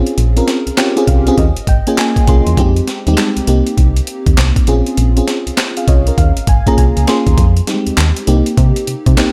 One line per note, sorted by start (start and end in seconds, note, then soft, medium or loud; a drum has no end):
0.00 0.29 C4 medium
0.00 0.29 C#4 medium
0.00 0.29 F4 medium
0.00 0.30 G#4 medium
0.07 closed hi-hat soft
0.18 0.41 A#1 loud
0.18 closed hi-hat medium
0.36 0.73 C4 medium
0.36 0.73 C#4 medium
0.36 0.73 F4 medium
0.36 0.74 A#4 medium
0.36 closed hi-hat medium
0.48 snare medium
0.48 closed hi-hat medium
0.67 0.71 C2 soft
0.67 closed hi-hat soft
0.77 0.94 C4 medium
0.77 0.94 C#4 medium
0.77 0.94 F4 medium
0.77 0.94 G4 loud
0.77 snare loud
0.77 clap loud
0.77 closed hi-hat medium
0.96 1.21 C4 medium
0.96 1.22 C#4 medium
0.96 1.22 F4 medium
0.96 1.22 G#4 loud
0.96 closed hi-hat medium
1.07 1.31 C2 medium
1.07 1.36 F5 medium
1.07 kick medium
1.07 closed hi-hat medium
1.27 1.38 C4 loud
1.27 1.38 C#4 medium
1.27 1.38 F4 medium
1.27 1.38 G#4 loud
1.27 closed hi-hat soft
1.38 1.52 D#2 loud
1.38 1.66 D#5 medium
1.38 kick medium
1.38 closed hi-hat medium
1.57 1.61 G#1 soft
1.57 closed hi-hat medium
1.67 1.82 G#1 medium
1.67 1.86 G5 medium
1.67 kick loud
1.67 closed hi-hat medium
1.87 2.23 A#3 medium
1.87 2.24 C#4 medium
1.87 2.24 F4 medium
1.87 2.24 G#4 loud
1.87 1.97 G#5 medium
1.87 closed hi-hat medium
1.98 2.26 G#5 medium
1.98 snare loud
1.98 clap medium
1.98 closed hi-hat medium
2.16 kick medium
2.16 closed hi-hat soft
2.27 2.42 C2 medium
2.27 2.55 A#3 medium
2.27 2.55 C#4 medium
2.27 2.55 F4 medium
2.27 2.55 G#4 medium
2.27 2.56 C6 medium
2.27 kick loud
2.27 closed hi-hat medium
2.47 2.55 E2 medium
2.47 closed hi-hat medium
2.57 2.81 F2 loud
2.57 2.99 G#3 medium
2.57 3.00 C4 medium
2.57 3.00 D#4 medium
2.57 3.00 G4 loud
2.57 kick loud
2.57 closed hi-hat medium
2.76 closed hi-hat soft
2.88 snare medium
2.88 closed hi-hat medium
3.07 3.15 D#2 medium
3.07 3.11 G3 medium
3.07 3.47 C4 medium
3.07 3.47 D#4 medium
3.07 3.48 G4 loud
3.07 closed hi-hat soft
3.13 3.51 G#3 loud
3.13 snare loud
3.13 closed hi-hat medium
3.18 clap medium
3.37 3.41 C2 soft
3.37 closed hi-hat medium
3.47 3.62 C2 loud
3.47 4.56 A#3 medium
3.47 4.56 C4 medium
3.47 4.56 D#4 medium
3.47 4.56 G4 loud
3.47 closed hi-hat medium
3.67 closed hi-hat soft
3.77 4.01 C2 loud
3.77 kick medium
3.77 closed hi-hat medium
3.97 closed hi-hat medium
4.07 closed hi-hat medium
4.26 4.35 D#2 medium
4.26 kick medium
4.26 closed hi-hat medium
4.38 4.52 C2 loud
4.38 snare loud
4.38 clap medium
4.38 closed hi-hat medium
4.56 kick medium
4.56 closed hi-hat medium
4.67 4.82 A#1 loud
4.67 5.09 C4 medium
4.67 5.09 C#4 medium
4.67 5.09 F4 medium
4.67 5.10 G#4 loud
4.67 closed hi-hat medium
4.86 closed hi-hat soft
4.97 5.21 A#1 loud
4.97 closed hi-hat medium
5.17 5.53 C4 medium
5.17 5.53 C#4 medium
5.17 5.54 F4 medium
5.17 5.54 G#4 medium
5.17 closed hi-hat medium
5.28 snare medium
5.28 closed hi-hat medium
5.47 5.51 C2 soft
5.47 closed hi-hat soft
5.57 snare loud
5.57 clap medium
5.57 closed hi-hat medium
5.77 5.88 G#4 medium
5.77 5.87 F5 medium
5.77 closed hi-hat medium
5.88 6.11 C2 medium
5.88 6.06 F4 medium
5.88 6.06 C#5 medium
5.88 6.16 D#5 medium
5.88 kick medium
5.88 closed hi-hat medium
6.07 6.36 C#4 medium
6.07 6.36 A#4 medium
6.07 closed hi-hat soft
6.18 6.32 D#2 loud
6.18 6.46 F5 medium
6.18 kick medium
6.18 closed hi-hat medium
6.37 6.41 G#1 soft
6.37 closed hi-hat medium
6.47 6.62 G#1 medium
6.47 6.66 G#5 medium
6.47 kick loud
6.47 closed hi-hat medium
6.67 7.03 A#3 medium
6.67 7.03 C#4 medium
6.67 7.04 F4 medium
6.67 7.04 G#4 loud
6.67 6.77 A#5 medium
6.67 kick medium
6.67 closed hi-hat medium
6.78 6.92 C2 medium
6.78 7.06 G#5 medium
6.78 kick medium
6.78 closed hi-hat medium
6.97 7.05 C#2 medium
6.97 closed hi-hat soft
7.07 7.35 A#3 medium
7.07 7.35 C#4 medium
7.07 7.35 F4 medium
7.07 7.35 G#4 loud
7.07 7.36 C6 medium
7.07 snare medium
7.07 closed hi-hat medium
7.27 7.35 D#2 loud
7.27 kick medium
7.27 closed hi-hat soft
7.38 7.61 F2 loud
7.38 kick loud
7.38 closed hi-hat medium
7.57 closed hi-hat soft
7.67 7.76 G3 medium
7.67 8.26 C4 medium
7.67 8.27 D#4 medium
7.67 8.27 G4 medium
7.67 snare medium
7.67 closed hi-hat medium
7.74 8.31 G#3 medium
7.87 7.91 D#2 soft
7.87 closed hi-hat soft
7.97 8.12 D#2 medium
7.97 snare loud
7.97 clap loud
7.97 closed hi-hat medium
8.16 closed hi-hat medium
8.27 8.42 C2 loud
8.27 9.09 A#3 medium
8.27 9.09 C4 medium
8.27 9.09 D#4 medium
8.27 9.09 G4 loud
8.27 closed hi-hat medium
8.46 closed hi-hat medium
8.57 8.72 C3 loud
8.57 kick medium
8.57 closed hi-hat medium
8.76 closed hi-hat medium
8.87 8.95 C3 soft
8.87 closed hi-hat medium
9.06 9.15 C3 loud
9.06 kick medium
9.06 closed hi-hat medium
9.17 9.25 C2 medium
9.17 9.32 A#3 medium
9.17 9.32 C4 medium
9.17 9.32 D#4 medium
9.17 9.32 G4 loud
9.17 snare loud
9.17 clap medium
9.17 closed hi-hat medium